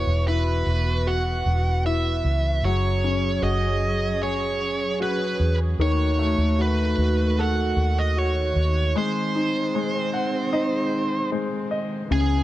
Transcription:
Already playing: E3 B3 F#4 C#5
0.07 E1
0.28 E4 B4
0.67 E1
1.07 F#4 F#5
1.46 E1
1.86 E4 E5
2.25 C#2
2.63 F#1 F#3 C#4 G#4 C#5
3.04 C#4
3.43 F#1 F#4 D#5
4.22 G#4 C#5
5.00 F#4 B4
5.40 E2
5.79 D#2 D#3 A3 F#4 C#5
6.19 A3
6.38 D#2
6.59 F#4 B4
6.98 D#2
7.39 A4 F#5
7.77 D#2
7.99 D#5
8.17 F#4 C#5
8.56 D#2
8.95 G#3 C4 C5
9.35 D#4
9.75 G#3
10.13 F#5
10.53 D#4 D#5
11.32 G#3 C5
11.71 D#5
12.10 C#2 C#3 E3 B3 G#4 G#5

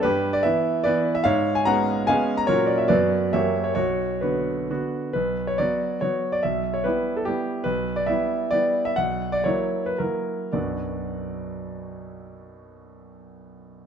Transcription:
0.03 G2 G4 B4
0.33 D5
0.43 E3 B3 E4 B4 E5
0.84 E3 B3 E4 B4 D5
1.15 E5
1.24 G#2 C#5 F5
1.55 G#5
1.65 G#3 B3 C#4 F#5 A#5
2.07 G#3 B3 C#4 F5 G#5
2.37 A#5
2.47 A#2 F#3 C#4 F#4 A#4 C#5
2.67 D5
2.78 E5
2.88 F#2 F#3 B3 F#4 B4 D5
3.33 F#2 F#3 A#3 G4 C#5 E5
3.64 C#5
3.75 B1 F#4 C#5
4.21 D3 B3 F#4 B4
4.70 D3 B3 F#4
5.13 B1 B4
5.47 C#5
5.58 F#3 B3 F#4 D5
6.01 F#3 B3 F#4 C#5
6.32 D5
6.43 B1 E5
6.74 C#5
6.84 G3 B3 E4 B4
7.17 A4
7.25 G3 B3 E4 G4
7.64 B1 B4
7.96 D5
8.06 G3 B3 E4 E5
8.51 G3 B3 E4 D5
8.85 E5
8.96 B1 F#5
9.32 D5
9.44 F#3 A#3 E4 C#5
9.86 B4
9.98 F#3 A#3 E4 A#4
10.53 B1 F#2 F#3 B3 D4 F#4 D5

